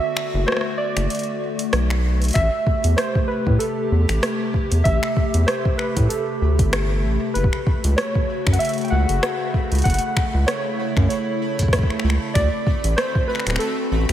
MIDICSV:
0, 0, Header, 1, 6, 480
1, 0, Start_track
1, 0, Tempo, 625000
1, 1808, Time_signature, 4, 2, 24, 8
1, 10848, End_track
2, 0, Start_track
2, 0, Title_t, "Synth keys"
2, 0, Program_c, 0, 88
2, 0, Note_on_c, 0, 76, 118
2, 331, Note_off_c, 0, 76, 0
2, 355, Note_on_c, 0, 72, 99
2, 463, Note_off_c, 0, 72, 0
2, 596, Note_on_c, 0, 74, 87
2, 1291, Note_off_c, 0, 74, 0
2, 1797, Note_on_c, 0, 76, 111
2, 2277, Note_on_c, 0, 72, 96
2, 2297, Note_off_c, 0, 76, 0
2, 2516, Note_on_c, 0, 71, 87
2, 2530, Note_off_c, 0, 72, 0
2, 2756, Note_on_c, 0, 69, 83
2, 2769, Note_off_c, 0, 71, 0
2, 3451, Note_off_c, 0, 69, 0
2, 3717, Note_on_c, 0, 76, 114
2, 4197, Note_on_c, 0, 72, 95
2, 4217, Note_off_c, 0, 76, 0
2, 4437, Note_on_c, 0, 71, 89
2, 4450, Note_off_c, 0, 72, 0
2, 4676, Note_on_c, 0, 69, 83
2, 4690, Note_off_c, 0, 71, 0
2, 5371, Note_off_c, 0, 69, 0
2, 5637, Note_on_c, 0, 71, 90
2, 6117, Note_on_c, 0, 73, 92
2, 6137, Note_off_c, 0, 71, 0
2, 6524, Note_off_c, 0, 73, 0
2, 6549, Note_on_c, 0, 78, 76
2, 6597, Note_on_c, 0, 76, 108
2, 6602, Note_off_c, 0, 78, 0
2, 6686, Note_off_c, 0, 76, 0
2, 6789, Note_on_c, 0, 79, 79
2, 6837, Note_on_c, 0, 78, 106
2, 6842, Note_off_c, 0, 79, 0
2, 7292, Note_off_c, 0, 78, 0
2, 7557, Note_on_c, 0, 78, 110
2, 8037, Note_on_c, 0, 73, 93
2, 8057, Note_off_c, 0, 78, 0
2, 8508, Note_off_c, 0, 73, 0
2, 8517, Note_on_c, 0, 73, 82
2, 9212, Note_off_c, 0, 73, 0
2, 9477, Note_on_c, 0, 74, 112
2, 9957, Note_on_c, 0, 72, 98
2, 9977, Note_off_c, 0, 74, 0
2, 10196, Note_on_c, 0, 71, 94
2, 10209, Note_off_c, 0, 72, 0
2, 10437, Note_on_c, 0, 69, 87
2, 10449, Note_off_c, 0, 71, 0
2, 10848, Note_off_c, 0, 69, 0
2, 10848, End_track
3, 0, Start_track
3, 0, Title_t, "Synth texture"
3, 0, Program_c, 1, 99
3, 1808, Note_on_c, 1, 57, 84
3, 1808, Note_on_c, 1, 83, 87
3, 10848, Note_off_c, 1, 57, 0
3, 10848, Note_off_c, 1, 83, 0
3, 10848, End_track
4, 0, Start_track
4, 0, Title_t, "Ambient pad"
4, 0, Program_c, 2, 92
4, 0, Note_on_c, 2, 50, 83
4, 0, Note_on_c, 2, 57, 80
4, 0, Note_on_c, 2, 66, 96
4, 1777, Note_off_c, 2, 50, 0
4, 1777, Note_off_c, 2, 66, 0
4, 1807, Note_on_c, 2, 48, 87
4, 1808, Note_on_c, 2, 67, 91
4, 5617, Note_off_c, 2, 48, 0
4, 5617, Note_off_c, 2, 57, 0
4, 5617, Note_off_c, 2, 67, 0
4, 5648, Note_on_c, 2, 49, 86
4, 5648, Note_on_c, 2, 57, 78
4, 5648, Note_on_c, 2, 66, 91
4, 7549, Note_off_c, 2, 66, 0
4, 7567, Note_on_c, 2, 64, 95
4, 9457, Note_off_c, 2, 49, 0
4, 9457, Note_off_c, 2, 57, 0
4, 9468, Note_off_c, 2, 64, 0
4, 9487, Note_on_c, 2, 60, 79
4, 9488, Note_on_c, 2, 50, 85
4, 9488, Note_on_c, 2, 66, 94
4, 10848, Note_off_c, 2, 50, 0
4, 10848, Note_off_c, 2, 60, 0
4, 10848, Note_off_c, 2, 66, 0
4, 10848, End_track
5, 0, Start_track
5, 0, Title_t, "Analog synth bass"
5, 0, Program_c, 3, 38
5, 262, Note_on_c, 3, 30, 106
5, 347, Note_off_c, 3, 30, 0
5, 742, Note_on_c, 3, 30, 82
5, 826, Note_off_c, 3, 30, 0
5, 1328, Note_on_c, 3, 35, 96
5, 1774, Note_off_c, 3, 35, 0
5, 1808, Note_on_c, 3, 33, 97
5, 1915, Note_off_c, 3, 33, 0
5, 2182, Note_on_c, 3, 40, 104
5, 2266, Note_off_c, 3, 40, 0
5, 2662, Note_on_c, 3, 45, 83
5, 2747, Note_off_c, 3, 45, 0
5, 3008, Note_on_c, 3, 40, 98
5, 3115, Note_off_c, 3, 40, 0
5, 3142, Note_on_c, 3, 33, 84
5, 3226, Note_off_c, 3, 33, 0
5, 3622, Note_on_c, 3, 40, 90
5, 3707, Note_off_c, 3, 40, 0
5, 3728, Note_on_c, 3, 33, 98
5, 3835, Note_off_c, 3, 33, 0
5, 4102, Note_on_c, 3, 40, 110
5, 4187, Note_off_c, 3, 40, 0
5, 4582, Note_on_c, 3, 45, 84
5, 4667, Note_off_c, 3, 45, 0
5, 4928, Note_on_c, 3, 38, 86
5, 5062, Note_on_c, 3, 31, 101
5, 5074, Note_off_c, 3, 38, 0
5, 5408, Note_on_c, 3, 33, 82
5, 5419, Note_off_c, 3, 31, 0
5, 5515, Note_off_c, 3, 33, 0
5, 5648, Note_on_c, 3, 30, 105
5, 5755, Note_off_c, 3, 30, 0
5, 6022, Note_on_c, 3, 37, 109
5, 6107, Note_off_c, 3, 37, 0
5, 6502, Note_on_c, 3, 42, 80
5, 6587, Note_off_c, 3, 42, 0
5, 6848, Note_on_c, 3, 37, 99
5, 6955, Note_off_c, 3, 37, 0
5, 6983, Note_on_c, 3, 30, 79
5, 7067, Note_off_c, 3, 30, 0
5, 7462, Note_on_c, 3, 37, 89
5, 7547, Note_off_c, 3, 37, 0
5, 7568, Note_on_c, 3, 30, 104
5, 7675, Note_off_c, 3, 30, 0
5, 7942, Note_on_c, 3, 37, 105
5, 8027, Note_off_c, 3, 37, 0
5, 8422, Note_on_c, 3, 42, 83
5, 8506, Note_off_c, 3, 42, 0
5, 9248, Note_on_c, 3, 37, 100
5, 9355, Note_off_c, 3, 37, 0
5, 9488, Note_on_c, 3, 38, 104
5, 9595, Note_off_c, 3, 38, 0
5, 9862, Note_on_c, 3, 33, 105
5, 9946, Note_off_c, 3, 33, 0
5, 10342, Note_on_c, 3, 26, 84
5, 10427, Note_off_c, 3, 26, 0
5, 10688, Note_on_c, 3, 33, 97
5, 10795, Note_off_c, 3, 33, 0
5, 10822, Note_on_c, 3, 38, 82
5, 10848, Note_off_c, 3, 38, 0
5, 10848, End_track
6, 0, Start_track
6, 0, Title_t, "Drums"
6, 128, Note_on_c, 9, 26, 86
6, 205, Note_off_c, 9, 26, 0
6, 368, Note_on_c, 9, 37, 107
6, 401, Note_off_c, 9, 37, 0
6, 401, Note_on_c, 9, 37, 91
6, 435, Note_off_c, 9, 37, 0
6, 435, Note_on_c, 9, 37, 76
6, 469, Note_off_c, 9, 37, 0
6, 469, Note_on_c, 9, 37, 59
6, 545, Note_off_c, 9, 37, 0
6, 742, Note_on_c, 9, 26, 55
6, 742, Note_on_c, 9, 42, 68
6, 819, Note_off_c, 9, 26, 0
6, 819, Note_off_c, 9, 42, 0
6, 848, Note_on_c, 9, 42, 52
6, 881, Note_off_c, 9, 42, 0
6, 881, Note_on_c, 9, 42, 42
6, 915, Note_off_c, 9, 42, 0
6, 915, Note_on_c, 9, 42, 35
6, 948, Note_off_c, 9, 42, 0
6, 948, Note_on_c, 9, 42, 28
6, 1025, Note_off_c, 9, 42, 0
6, 1222, Note_on_c, 9, 42, 66
6, 1299, Note_off_c, 9, 42, 0
6, 1328, Note_on_c, 9, 37, 122
6, 1328, Note_on_c, 9, 42, 56
6, 1404, Note_off_c, 9, 37, 0
6, 1404, Note_off_c, 9, 42, 0
6, 1462, Note_on_c, 9, 26, 84
6, 1539, Note_off_c, 9, 26, 0
6, 1702, Note_on_c, 9, 42, 29
6, 1720, Note_off_c, 9, 42, 0
6, 1720, Note_on_c, 9, 42, 33
6, 1728, Note_off_c, 9, 42, 0
6, 1728, Note_on_c, 9, 42, 41
6, 1755, Note_off_c, 9, 42, 0
6, 1755, Note_on_c, 9, 42, 45
6, 1772, Note_off_c, 9, 42, 0
6, 1772, Note_on_c, 9, 42, 50
6, 1790, Note_off_c, 9, 42, 0
6, 1790, Note_on_c, 9, 42, 55
6, 1808, Note_off_c, 9, 42, 0
6, 1808, Note_on_c, 9, 26, 57
6, 1808, Note_on_c, 9, 36, 119
6, 1808, Note_on_c, 9, 42, 55
6, 1884, Note_off_c, 9, 26, 0
6, 1884, Note_off_c, 9, 36, 0
6, 1884, Note_off_c, 9, 42, 0
6, 2048, Note_on_c, 9, 36, 108
6, 2124, Note_off_c, 9, 36, 0
6, 2182, Note_on_c, 9, 42, 68
6, 2259, Note_off_c, 9, 42, 0
6, 2287, Note_on_c, 9, 37, 117
6, 2287, Note_on_c, 9, 42, 54
6, 2364, Note_off_c, 9, 37, 0
6, 2364, Note_off_c, 9, 42, 0
6, 2422, Note_on_c, 9, 36, 106
6, 2499, Note_off_c, 9, 36, 0
6, 2662, Note_on_c, 9, 36, 106
6, 2739, Note_off_c, 9, 36, 0
6, 2768, Note_on_c, 9, 42, 55
6, 2844, Note_off_c, 9, 42, 0
6, 3142, Note_on_c, 9, 26, 57
6, 3142, Note_on_c, 9, 42, 69
6, 3219, Note_off_c, 9, 26, 0
6, 3219, Note_off_c, 9, 42, 0
6, 3248, Note_on_c, 9, 37, 122
6, 3248, Note_on_c, 9, 42, 57
6, 3324, Note_off_c, 9, 37, 0
6, 3324, Note_off_c, 9, 42, 0
6, 3488, Note_on_c, 9, 36, 82
6, 3565, Note_off_c, 9, 36, 0
6, 3622, Note_on_c, 9, 42, 66
6, 3699, Note_off_c, 9, 42, 0
6, 3728, Note_on_c, 9, 36, 127
6, 3728, Note_on_c, 9, 42, 56
6, 3804, Note_off_c, 9, 42, 0
6, 3805, Note_off_c, 9, 36, 0
6, 3862, Note_on_c, 9, 26, 77
6, 3939, Note_off_c, 9, 26, 0
6, 3968, Note_on_c, 9, 36, 109
6, 4045, Note_off_c, 9, 36, 0
6, 4102, Note_on_c, 9, 42, 71
6, 4179, Note_off_c, 9, 42, 0
6, 4208, Note_on_c, 9, 37, 117
6, 4208, Note_on_c, 9, 42, 53
6, 4284, Note_off_c, 9, 37, 0
6, 4284, Note_off_c, 9, 42, 0
6, 4342, Note_on_c, 9, 36, 108
6, 4419, Note_off_c, 9, 36, 0
6, 4447, Note_on_c, 9, 26, 55
6, 4524, Note_off_c, 9, 26, 0
6, 4582, Note_on_c, 9, 36, 109
6, 4582, Note_on_c, 9, 42, 73
6, 4659, Note_off_c, 9, 36, 0
6, 4659, Note_off_c, 9, 42, 0
6, 4688, Note_on_c, 9, 42, 59
6, 4764, Note_off_c, 9, 42, 0
6, 5062, Note_on_c, 9, 36, 120
6, 5062, Note_on_c, 9, 42, 72
6, 5139, Note_off_c, 9, 36, 0
6, 5139, Note_off_c, 9, 42, 0
6, 5168, Note_on_c, 9, 26, 82
6, 5168, Note_on_c, 9, 37, 123
6, 5168, Note_on_c, 9, 42, 56
6, 5245, Note_off_c, 9, 26, 0
6, 5245, Note_off_c, 9, 37, 0
6, 5245, Note_off_c, 9, 42, 0
6, 5648, Note_on_c, 9, 42, 54
6, 5715, Note_on_c, 9, 36, 127
6, 5725, Note_off_c, 9, 42, 0
6, 5782, Note_on_c, 9, 26, 53
6, 5792, Note_off_c, 9, 36, 0
6, 5859, Note_off_c, 9, 26, 0
6, 5888, Note_on_c, 9, 36, 113
6, 5965, Note_off_c, 9, 36, 0
6, 6022, Note_on_c, 9, 42, 68
6, 6099, Note_off_c, 9, 42, 0
6, 6128, Note_on_c, 9, 37, 124
6, 6128, Note_on_c, 9, 42, 53
6, 6205, Note_off_c, 9, 37, 0
6, 6205, Note_off_c, 9, 42, 0
6, 6262, Note_on_c, 9, 36, 112
6, 6339, Note_off_c, 9, 36, 0
6, 6502, Note_on_c, 9, 26, 80
6, 6502, Note_on_c, 9, 36, 109
6, 6555, Note_on_c, 9, 42, 72
6, 6579, Note_off_c, 9, 26, 0
6, 6579, Note_off_c, 9, 36, 0
6, 6608, Note_off_c, 9, 42, 0
6, 6608, Note_on_c, 9, 42, 52
6, 6641, Note_off_c, 9, 42, 0
6, 6641, Note_on_c, 9, 42, 41
6, 6675, Note_off_c, 9, 42, 0
6, 6675, Note_on_c, 9, 42, 36
6, 6708, Note_off_c, 9, 42, 0
6, 6708, Note_on_c, 9, 42, 28
6, 6742, Note_off_c, 9, 42, 0
6, 6742, Note_on_c, 9, 42, 23
6, 6769, Note_off_c, 9, 42, 0
6, 6769, Note_on_c, 9, 42, 19
6, 6795, Note_off_c, 9, 42, 0
6, 6795, Note_on_c, 9, 42, 16
6, 6822, Note_off_c, 9, 42, 0
6, 6822, Note_on_c, 9, 42, 12
6, 6898, Note_off_c, 9, 42, 0
6, 6982, Note_on_c, 9, 42, 69
6, 7059, Note_off_c, 9, 42, 0
6, 7088, Note_on_c, 9, 26, 51
6, 7088, Note_on_c, 9, 37, 126
6, 7088, Note_on_c, 9, 42, 57
6, 7165, Note_off_c, 9, 26, 0
6, 7165, Note_off_c, 9, 37, 0
6, 7165, Note_off_c, 9, 42, 0
6, 7328, Note_on_c, 9, 36, 84
6, 7405, Note_off_c, 9, 36, 0
6, 7462, Note_on_c, 9, 42, 30
6, 7488, Note_off_c, 9, 42, 0
6, 7488, Note_on_c, 9, 42, 34
6, 7515, Note_off_c, 9, 42, 0
6, 7515, Note_on_c, 9, 42, 36
6, 7542, Note_off_c, 9, 42, 0
6, 7542, Note_on_c, 9, 42, 43
6, 7568, Note_off_c, 9, 42, 0
6, 7568, Note_on_c, 9, 36, 127
6, 7568, Note_on_c, 9, 42, 52
6, 7602, Note_off_c, 9, 42, 0
6, 7602, Note_on_c, 9, 42, 51
6, 7635, Note_off_c, 9, 42, 0
6, 7635, Note_on_c, 9, 42, 57
6, 7645, Note_off_c, 9, 36, 0
6, 7669, Note_off_c, 9, 42, 0
6, 7669, Note_on_c, 9, 42, 60
6, 7746, Note_off_c, 9, 42, 0
6, 7808, Note_on_c, 9, 26, 82
6, 7808, Note_on_c, 9, 36, 111
6, 7885, Note_off_c, 9, 26, 0
6, 7885, Note_off_c, 9, 36, 0
6, 8048, Note_on_c, 9, 37, 127
6, 8048, Note_on_c, 9, 42, 65
6, 8125, Note_off_c, 9, 37, 0
6, 8125, Note_off_c, 9, 42, 0
6, 8422, Note_on_c, 9, 26, 51
6, 8422, Note_on_c, 9, 36, 116
6, 8499, Note_off_c, 9, 26, 0
6, 8499, Note_off_c, 9, 36, 0
6, 8528, Note_on_c, 9, 42, 51
6, 8605, Note_off_c, 9, 42, 0
6, 8902, Note_on_c, 9, 36, 53
6, 8902, Note_on_c, 9, 42, 65
6, 8928, Note_off_c, 9, 36, 0
6, 8928, Note_on_c, 9, 36, 64
6, 8973, Note_off_c, 9, 36, 0
6, 8973, Note_on_c, 9, 36, 77
6, 8979, Note_off_c, 9, 42, 0
6, 9008, Note_off_c, 9, 36, 0
6, 9008, Note_on_c, 9, 36, 90
6, 9008, Note_on_c, 9, 37, 122
6, 9008, Note_on_c, 9, 42, 52
6, 9052, Note_off_c, 9, 36, 0
6, 9052, Note_on_c, 9, 36, 98
6, 9084, Note_off_c, 9, 37, 0
6, 9084, Note_off_c, 9, 42, 0
6, 9088, Note_off_c, 9, 36, 0
6, 9088, Note_on_c, 9, 36, 104
6, 9142, Note_on_c, 9, 26, 37
6, 9165, Note_off_c, 9, 36, 0
6, 9213, Note_off_c, 9, 26, 0
6, 9213, Note_on_c, 9, 26, 49
6, 9289, Note_off_c, 9, 26, 0
6, 9292, Note_on_c, 9, 26, 62
6, 9369, Note_off_c, 9, 26, 0
6, 9488, Note_on_c, 9, 26, 52
6, 9488, Note_on_c, 9, 36, 127
6, 9488, Note_on_c, 9, 42, 67
6, 9564, Note_off_c, 9, 26, 0
6, 9564, Note_off_c, 9, 42, 0
6, 9565, Note_off_c, 9, 36, 0
6, 9728, Note_on_c, 9, 36, 107
6, 9805, Note_off_c, 9, 36, 0
6, 9862, Note_on_c, 9, 42, 62
6, 9939, Note_off_c, 9, 42, 0
6, 9968, Note_on_c, 9, 37, 123
6, 9968, Note_on_c, 9, 42, 51
6, 10044, Note_off_c, 9, 37, 0
6, 10044, Note_off_c, 9, 42, 0
6, 10102, Note_on_c, 9, 36, 111
6, 10179, Note_off_c, 9, 36, 0
6, 10253, Note_on_c, 9, 26, 42
6, 10288, Note_off_c, 9, 26, 0
6, 10288, Note_on_c, 9, 26, 50
6, 10342, Note_off_c, 9, 26, 0
6, 10342, Note_on_c, 9, 26, 55
6, 10342, Note_on_c, 9, 42, 66
6, 10368, Note_off_c, 9, 26, 0
6, 10368, Note_on_c, 9, 26, 63
6, 10413, Note_off_c, 9, 26, 0
6, 10413, Note_on_c, 9, 26, 70
6, 10419, Note_off_c, 9, 42, 0
6, 10448, Note_on_c, 9, 42, 51
6, 10489, Note_off_c, 9, 26, 0
6, 10525, Note_off_c, 9, 42, 0
6, 10822, Note_on_c, 9, 26, 54
6, 10822, Note_on_c, 9, 42, 64
6, 10848, Note_off_c, 9, 26, 0
6, 10848, Note_off_c, 9, 42, 0
6, 10848, End_track
0, 0, End_of_file